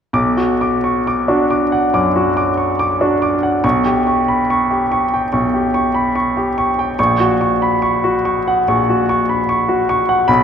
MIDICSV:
0, 0, Header, 1, 2, 480
1, 0, Start_track
1, 0, Key_signature, 2, "minor"
1, 0, Tempo, 931677
1, 73, Time_signature, 4, 2, 24, 8
1, 551, Tempo, 864553
1, 1511, Tempo, 835655
1, 4871, Tempo, 814111
1, 5924, End_track
2, 0, Start_track
2, 0, Title_t, "Grand piano"
2, 0, Program_c, 0, 0
2, 69, Note_on_c, 0, 35, 44
2, 71, Note_on_c, 0, 86, 54
2, 184, Control_c, 0, 64, 127
2, 191, Note_on_c, 0, 66, 38
2, 266, Note_off_c, 0, 86, 0
2, 316, Note_on_c, 0, 86, 39
2, 386, Note_off_c, 0, 66, 0
2, 433, Note_on_c, 0, 85, 36
2, 505, Note_off_c, 0, 86, 0
2, 551, Note_off_c, 0, 85, 0
2, 553, Note_on_c, 0, 86, 44
2, 669, Note_on_c, 0, 62, 38
2, 671, Note_on_c, 0, 66, 40
2, 749, Note_off_c, 0, 86, 0
2, 792, Note_on_c, 0, 86, 40
2, 865, Note_off_c, 0, 62, 0
2, 866, Note_off_c, 0, 66, 0
2, 913, Note_on_c, 0, 78, 39
2, 986, Note_off_c, 0, 86, 0
2, 1012, Note_off_c, 0, 35, 0
2, 1032, Note_on_c, 0, 42, 38
2, 1034, Note_on_c, 0, 86, 42
2, 1107, Note_off_c, 0, 78, 0
2, 1155, Note_on_c, 0, 66, 41
2, 1225, Note_off_c, 0, 42, 0
2, 1227, Note_off_c, 0, 86, 0
2, 1272, Note_on_c, 0, 86, 44
2, 1346, Note_off_c, 0, 66, 0
2, 1387, Note_on_c, 0, 85, 32
2, 1463, Note_off_c, 0, 86, 0
2, 1508, Note_off_c, 0, 85, 0
2, 1508, Note_on_c, 0, 86, 42
2, 1631, Note_on_c, 0, 66, 37
2, 1632, Note_on_c, 0, 62, 39
2, 1703, Note_off_c, 0, 86, 0
2, 1753, Note_on_c, 0, 86, 44
2, 1824, Note_off_c, 0, 66, 0
2, 1825, Note_off_c, 0, 62, 0
2, 1874, Note_on_c, 0, 78, 39
2, 1946, Note_off_c, 0, 86, 0
2, 1993, Note_on_c, 0, 85, 54
2, 1994, Note_off_c, 0, 78, 0
2, 1994, Note_on_c, 0, 35, 48
2, 2003, Control_c, 0, 64, 0
2, 2098, Control_c, 0, 64, 127
2, 2119, Note_on_c, 0, 67, 41
2, 2186, Note_off_c, 0, 85, 0
2, 2241, Note_on_c, 0, 85, 37
2, 2310, Note_off_c, 0, 67, 0
2, 2364, Note_on_c, 0, 83, 35
2, 2432, Note_off_c, 0, 85, 0
2, 2482, Note_off_c, 0, 83, 0
2, 2490, Note_on_c, 0, 85, 47
2, 2607, Note_on_c, 0, 67, 39
2, 2677, Note_off_c, 0, 85, 0
2, 2728, Note_on_c, 0, 85, 43
2, 2795, Note_off_c, 0, 67, 0
2, 2854, Note_on_c, 0, 79, 41
2, 2914, Note_off_c, 0, 85, 0
2, 2934, Note_off_c, 0, 35, 0
2, 2963, Note_on_c, 0, 85, 38
2, 2967, Note_on_c, 0, 35, 38
2, 3036, Note_off_c, 0, 79, 0
2, 3085, Note_on_c, 0, 67, 38
2, 3150, Note_off_c, 0, 85, 0
2, 3202, Note_on_c, 0, 85, 41
2, 3271, Note_off_c, 0, 67, 0
2, 3318, Note_on_c, 0, 83, 36
2, 3391, Note_off_c, 0, 85, 0
2, 3437, Note_off_c, 0, 83, 0
2, 3439, Note_on_c, 0, 85, 43
2, 3562, Note_on_c, 0, 67, 38
2, 3630, Note_off_c, 0, 85, 0
2, 3682, Note_on_c, 0, 85, 45
2, 3751, Note_off_c, 0, 67, 0
2, 3804, Note_on_c, 0, 79, 44
2, 3870, Note_off_c, 0, 85, 0
2, 3896, Note_off_c, 0, 35, 0
2, 3918, Note_off_c, 0, 79, 0
2, 3919, Note_on_c, 0, 85, 58
2, 3921, Note_on_c, 0, 34, 49
2, 3923, Control_c, 0, 64, 0
2, 4006, Control_c, 0, 64, 127
2, 4038, Note_on_c, 0, 66, 43
2, 4104, Note_off_c, 0, 85, 0
2, 4160, Note_on_c, 0, 85, 41
2, 4223, Note_off_c, 0, 66, 0
2, 4281, Note_on_c, 0, 83, 40
2, 4344, Note_off_c, 0, 85, 0
2, 4393, Note_off_c, 0, 83, 0
2, 4396, Note_on_c, 0, 85, 47
2, 4521, Note_on_c, 0, 66, 43
2, 4584, Note_off_c, 0, 85, 0
2, 4644, Note_on_c, 0, 85, 45
2, 4709, Note_off_c, 0, 66, 0
2, 4772, Note_on_c, 0, 78, 44
2, 4832, Note_off_c, 0, 85, 0
2, 4853, Note_off_c, 0, 34, 0
2, 4890, Note_on_c, 0, 34, 42
2, 4892, Note_on_c, 0, 85, 43
2, 4958, Note_off_c, 0, 78, 0
2, 5017, Note_on_c, 0, 66, 42
2, 5078, Note_off_c, 0, 85, 0
2, 5134, Note_on_c, 0, 85, 51
2, 5197, Note_off_c, 0, 66, 0
2, 5251, Note_on_c, 0, 83, 35
2, 5314, Note_off_c, 0, 85, 0
2, 5361, Note_off_c, 0, 83, 0
2, 5367, Note_on_c, 0, 85, 45
2, 5483, Note_on_c, 0, 66, 43
2, 5551, Note_off_c, 0, 85, 0
2, 5605, Note_on_c, 0, 85, 53
2, 5670, Note_off_c, 0, 66, 0
2, 5721, Note_on_c, 0, 78, 47
2, 5791, Note_off_c, 0, 85, 0
2, 5818, Note_off_c, 0, 34, 0
2, 5832, Note_on_c, 0, 83, 61
2, 5836, Note_on_c, 0, 35, 52
2, 5837, Note_off_c, 0, 78, 0
2, 5844, Control_c, 0, 64, 0
2, 5924, Note_off_c, 0, 35, 0
2, 5924, Note_off_c, 0, 83, 0
2, 5924, End_track
0, 0, End_of_file